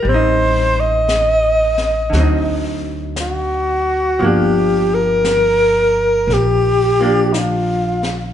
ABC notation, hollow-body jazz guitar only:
X:1
M:4/4
L:1/8
Q:"Swing" 1/4=58
K:Gphr
V:1 name="Hollow-body jazz guitar"
[G,CE]4 [D,^F,CE]4 | [F,B,D]4- [F,B,D] [F,B,D]3 |]